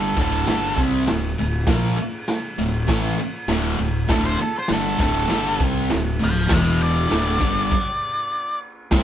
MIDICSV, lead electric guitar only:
0, 0, Header, 1, 2, 480
1, 0, Start_track
1, 0, Key_signature, -1, "minor"
1, 0, Tempo, 604230
1, 1333, Time_signature, 4, 2, 24, 8
1, 7174, End_track
2, 0, Start_track
2, 0, Title_t, "Lead electric guitar"
2, 0, Program_c, 0, 29
2, 0, Note_on_c, 0, 69, 89
2, 139, Note_off_c, 0, 69, 0
2, 172, Note_on_c, 0, 69, 98
2, 619, Note_off_c, 0, 69, 0
2, 3273, Note_on_c, 0, 69, 108
2, 3377, Note_off_c, 0, 69, 0
2, 3380, Note_on_c, 0, 72, 82
2, 3493, Note_off_c, 0, 72, 0
2, 3508, Note_on_c, 0, 69, 88
2, 3617, Note_off_c, 0, 69, 0
2, 3645, Note_on_c, 0, 72, 82
2, 3746, Note_off_c, 0, 72, 0
2, 3756, Note_on_c, 0, 69, 91
2, 3973, Note_off_c, 0, 69, 0
2, 3983, Note_on_c, 0, 69, 102
2, 4443, Note_off_c, 0, 69, 0
2, 4954, Note_on_c, 0, 77, 87
2, 4958, Note_on_c, 0, 81, 98
2, 5178, Note_off_c, 0, 81, 0
2, 5183, Note_off_c, 0, 77, 0
2, 5194, Note_on_c, 0, 76, 87
2, 5200, Note_on_c, 0, 79, 84
2, 5407, Note_off_c, 0, 76, 0
2, 5418, Note_off_c, 0, 79, 0
2, 5424, Note_on_c, 0, 74, 104
2, 6824, Note_off_c, 0, 74, 0
2, 7174, End_track
0, 0, End_of_file